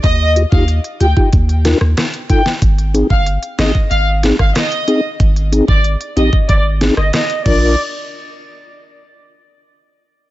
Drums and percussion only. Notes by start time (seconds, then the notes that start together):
0.04 kick, closed hi-hat
0.36 closed hi-hat
0.52 kick
0.68 closed hi-hat
0.84 closed hi-hat
1.01 closed hi-hat
1.17 kick
1.33 kick, closed hi-hat
1.49 closed hi-hat
1.65 snare, closed hi-hat
1.81 cross-stick
1.97 cross-stick, snare, closed hi-hat
2.14 closed hi-hat
2.30 kick, closed hi-hat
2.46 snare
2.62 kick, closed hi-hat
2.78 closed hi-hat
2.95 closed hi-hat
3.10 kick
3.26 closed hi-hat
3.43 closed hi-hat
3.59 cross-stick, snare, closed hi-hat
3.75 kick
3.91 closed hi-hat
4.23 snare, closed hi-hat
4.39 kick, cross-stick
4.55 cross-stick, snare, closed hi-hat
4.72 closed hi-hat
4.88 closed hi-hat
5.20 kick, closed hi-hat
5.36 closed hi-hat
5.53 closed hi-hat
5.68 kick
5.84 closed hi-hat
6.01 closed hi-hat
6.17 closed hi-hat
6.33 kick
6.49 kick, closed hi-hat
6.81 snare, closed hi-hat
6.97 cross-stick
7.13 cross-stick, snare, closed hi-hat
7.30 closed hi-hat
7.46 kick, crash